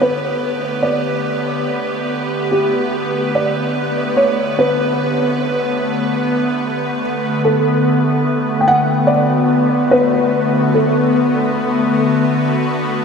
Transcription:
0.00 13.05 D3 medium
0.00 13.05 A3 medium
0.00 13.05 B3 medium
0.00 7.45 G4 medium
0.00 13.05 B4 medium
0.00 0.88 B4 medium
0.82 2.04 D5 medium
2.51 3.36 G4 medium
3.35 4.19 D5 medium
4.17 4.58 C#5 medium
4.59 7.00 B4 medium
7.45 8.64 A4 medium
8.44 13.05 F#4 medium
8.60 8.68 G5 medium
8.68 9.10 F#5 medium
9.07 9.93 D5 medium
9.91 10.76 B4 medium
10.74 11.93 A4 medium

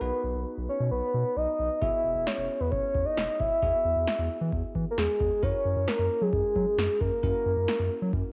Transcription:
0.01 0.11 B1 loud
0.01 1.78 B3 medium
0.01 1.78 D#4 medium
0.01 1.78 F#4 medium
0.01 0.43 B4 medium
0.01 1.78 B4 medium
0.24 0.34 B1 loud
0.35 0.45 B1 medium
0.58 0.68 B1 medium
0.69 0.90 C#5 medium
0.80 0.90 B2 loud
0.92 1.01 B1 loud
0.92 1.38 B4 loud
1.14 1.24 B2 medium
1.37 1.47 B1 loud
1.37 1.83 D#5 loud
1.60 1.69 B1 loud
1.81 1.92 E1 loud
1.81 3.59 B3 medium
1.81 3.59 E4 medium
1.81 3.59 F#4 medium
1.81 3.59 G#4 medium
1.81 2.28 E5 loud
1.81 kick loud
2.05 2.14 E1 loud
2.16 2.26 E1 loud
2.27 2.62 C#5 loud
2.27 snare loud
2.38 2.48 E1 medium
2.60 2.71 E2 medium
2.60 2.71 B4 medium
2.71 2.82 E1 loud
2.71 3.07 C#5 loud
2.71 kick medium
2.95 3.05 E2 loud
2.95 kick medium
3.05 3.41 D#5 loud
3.17 3.27 E1 loud
3.17 snare loud
3.39 3.50 E1 loud
3.39 4.75 E5 loud
3.39 kick medium
3.62 3.72 E2 loud
3.62 5.39 B3 medium
3.62 5.39 E4 medium
3.62 5.39 F#4 medium
3.62 5.39 G#4 medium
3.62 kick loud
3.85 3.95 E2 loud
3.96 4.06 E2 loud
4.07 snare loud
4.19 4.29 E2 medium
4.41 4.51 E3 loud
4.52 4.62 E2 loud
4.52 kick medium
4.75 4.85 E3 medium
4.75 kick medium
4.90 4.99 A#4 medium
4.98 5.08 E2 loud
4.98 5.44 G#4 medium
4.98 snare loud
5.20 5.30 E2 medium
5.20 kick medium
5.43 5.53 F#2 loud
5.43 7.20 C#4 medium
5.43 7.20 E4 medium
5.43 7.20 F#4 medium
5.43 7.20 A#4 medium
5.43 5.89 C#5 loud
5.43 kick loud
5.65 5.75 F#2 loud
5.77 5.86 F#2 medium
5.88 6.24 A#4 loud
5.88 snare loud
5.99 6.09 F#2 loud
6.22 6.32 F#3 loud
6.22 7.00 G#4 loud
6.33 6.43 F#2 loud
6.33 kick medium
6.56 6.65 F#3 loud
6.56 kick medium
6.78 6.88 F#2 loud
6.78 snare loud
7.01 7.11 F#2 loud
7.01 8.32 A#4 loud
7.01 kick medium
7.23 7.33 F#2 loud
7.23 8.32 C#4 medium
7.23 8.32 E4 medium
7.23 8.32 F#4 medium
7.23 8.32 A#4 medium
7.23 kick loud
7.46 7.56 F#2 loud
7.57 7.67 F#2 medium
7.68 snare loud
7.80 7.89 F#2 medium
8.02 8.12 F#3 loud
8.13 8.23 F#2 loud
8.13 kick medium

